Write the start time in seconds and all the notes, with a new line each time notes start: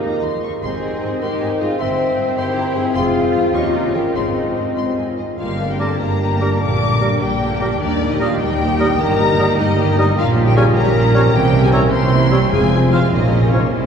Already playing: A#3 D#4 G4 D#5
0.03 D#2 A#5
0.23 D#2 C6
0.43 D#2 C#6
0.63 G#1 G#2 C4 G#4 C5 D#5 C6
1.03 G#2 D#5
1.22 G#2 D#4 G4 A#4 C6
1.41 G#2 G#5
1.60 G#2 F4 G#4 D#5
1.79 G1 G2 A#3 C4 C5 E5 G5 C6
2.17 G2 G5
2.37 G2 E4 G4 C5 C6
2.55 G2 A#5
2.75 G2 G#4 C5 G5
2.94 F1 F2 G#3 C4 F4 G#4 F5 C6
3.34 F2 F5
3.54 D#2 A#3 C#4 D#4 G4 D#5 C#6
3.74 D#2 A#5
3.94 D#2 G4 A#4 G5
4.14 G#1 G#2 G#3 C4 D#4 G#4 D#5 C6
4.57 G#2 D#5
4.77 G#2 C6
4.97 G#2 G#5
5.18 G#2 D#5
5.38 G1 G2 G3 A#3 D4 F4 G4 F5
5.59 G3 A#3 D4 A#4
5.70 G4 G5
5.79 G3 A#3 G4 A4 A#4 A5 D6
5.99 G1 G2 G3 A#3 D4 A#4 A#5
6.20 G3 A#3 G4
6.41 G3 A#3 D4 A#4 D6
6.61 A#1 A#2 D3 A#3 G4 D5 D6
6.80 G3 D4 A#4
7.01 D3 G3 A#3 G4 A#4 D6
7.21 A#1 A#2 G3 D4 G4 A#4 G5
7.41 D3 A#3 G4
7.60 G3 D4 A#4 D6
7.80 D#2 D#3 G3 A#3 D4 D#4 G4 D5
8.01 G3 D#4 A#4
8.11 D#4 D#5
8.20 D#3 G3 A#3 F4 G4 A#4 F5 D#6
8.40 D#2 G3 D#4 G4 A#4 G5
8.59 D#3 A#3 G4
8.80 G3 D#4 A#4 D#6
9.00 G1 G2 D#3 A#3 G4 A#4 A#5
9.19 G3 D#4 A#4
9.39 D#3 G3 A#3 G4 A#4 D#6
9.57 G1 G2 G3 D#4 A#4 D#5
9.78 D#3 A#3 G4
9.97 G3 D#4 A#4 D#6
10.16 A#1 A#2 F3 G3 A#3 C#4 F4 F5
10.36 F3 G3 C#4 G4
10.46 G4 G5
10.55 F3 G3 A#3 F4 G#4 C#5 G#5 F6
10.74 A#1 A#2 F3 G3 C#4 G4 A#4 A#5
10.94 F3 A#3 F4
11.14 F3 G3 C#4 G4 C#5 F6
11.34 C2 C3 E3 A#3 C4 E4 G4 G5
11.53 G3 C4 C#4 G4
11.64 G#4 G#5
11.72 E3 G3 A#3 C4 E4 A#4 C#5 A#5 E6
11.92 C2 C3 G3 C4 C#4 G4 C5 C6
12.12 E3 A#3 C4 E4
12.31 G3 C4 C#4 G4 C#5 E6
12.51 F1 F2 F3 G#3 C4 F4 G#4 G#5
12.72 F3 C4 G#4
12.91 F3 G#3 F4 C5 F5 F6
13.12 A#1 A#2 F3 A#3 C#4 D#4 F4 D#5
13.32 F3 C#4 A#4
13.53 F3 A#3 C#4 F4 C#5 F6
13.73 C2 C3 E3 G3 C4 E4 C5